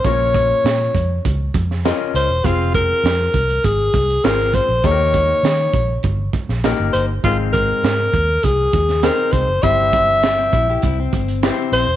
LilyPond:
<<
  \new Staff \with { instrumentName = "Alto saxophone" } { \time 4/4 \key aes \major \tempo 4 = 100 des''2 r4. c''8 | f'8 bes'4. aes'4 bes'8 c''8 | des''2 r4. c''8 | f'8 bes'4. aes'4 bes'8 c''8 |
e''2 r4. c''8 | }
  \new Staff \with { instrumentName = "Grand piano" } { \time 4/4 \key aes \major <bes, des' f' bes' des''>4. r4. <c' des' f' bes' ees''>8 r8 | <c' f' aes' c''>4. r4. <c' f' aes' c''>8 r8 | <ees bes ees' g' a' bes'>4. r4. <bes ees' ges' g' bes'>8 r8 | <aes, c' ees' aes' bes' c''>4. r4. <c' ees' aes' c''>8 r8 |
<g, c' e' g' c''>4. r4. <c' e' g' ces'' c''>8 r8 | }
  \new Staff \with { instrumentName = "Clean electric guitar" } { \time 4/4 \key aes \major r1 | r1 | r1 | r1 |
r4 r16 c'16 <c' e'>16 <e' g'>16 <c' e'>16 c'4. r16 | }
  \new Staff \with { instrumentName = "Fingered electric bass" } { \clef bass \time 4/4 \key aes \major bes,,4 bes,8 f,8 des,8 f,8. r16 des,16 fes,,16 | f,,4 f,8 c,8 aes,,8 c,8 aes,,8. bes,,16 | ees,4 ees8 bes,,8 g,,8 r16 bes,,8 g,,16 g,,8 | aes,,4 aes,8 ees,8 c,8 ees,8. r16 c,16 ges,,16 |
g,,4. bes,,8 c,8 g,,8. r16 bes,,16 e,,16 | }
  \new DrumStaff \with { instrumentName = "Drums" } \drummode { \time 4/4 <hh bd>8 <hh bd>8 <hh sn>8 <hh bd>8 <hh bd>8 <hh bd>16 sn16 <hh sn>8 hh8 | <hh bd>8 <hh bd>8 <hh sn>8 <hh bd>16 hh16 <hh bd>8 <hh bd>16 hh16 <hh sn>16 sn16 <hh bd>8 | <hh bd>8 <hh bd>8 <hh sn>8 <hh bd>8 <hh bd>8 <hh bd>16 sn16 <hh sn>8 hh8 | <hh bd>8 <hh bd>8 <hh sn>8 <hh bd>8 <hh bd>8 <hh bd>16 <hh sn>16 <hh sn>8 <hh bd>8 |
<hh bd>8 <hh bd>8 <hh sn>8 <hh bd>8 <hh bd>8 <hh bd>16 hh16 <hh sn>8 hh8 | }
>>